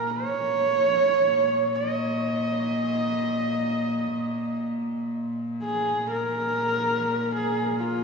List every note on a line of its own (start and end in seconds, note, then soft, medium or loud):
0.00 0.36 A#2 medium
0.00 0.11 A#4 medium
0.10 1.77 C#5 loud
0.37 6.04 A#2 medium
1.75 4.64 D#5 medium
5.64 6.08 G#4 medium
6.04 8.04 A#2 medium
6.12 7.31 A#4 medium
7.37 7.77 G#4 medium
7.80 8.04 F4 medium